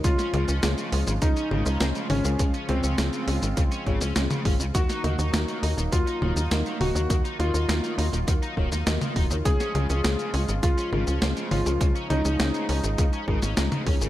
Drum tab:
HH |xxxxxxoxxx-xxxox|xxxxxxoxxxxxxxox|xxxxxxoxxx-xxxox|xxxxxxoxxx-xxxox|
SH |xx-xxx-xxx-xxx-x|xx-xxx-xxx-xxx-x|xx-xxx-xxx-xxx-x|xx-xxx-xxx-xxx-x|
SD |-o--o-------o---|----o------oo---|-o--o-------o---|----o------oo---|
T2 |--o-------o---o-|--o----------o--|--o-------o---o-|-------------o--|
BD |o-------o-------|o-------o-o---o-|o-------o-------|o-------o-o---o-|

HH |xxxxxxoxxx-xxxox|xxxxxxoxxx-xxxox|
SH |xx-xxx-xxx-xxx-x|xx-xxx-xxx-xxx-x|
SD |-o--o-------o---|----o------oo---|
T2 |--o-------o---o-|--o----------o--|
BD |o-------o-------|o-------o-o---o-|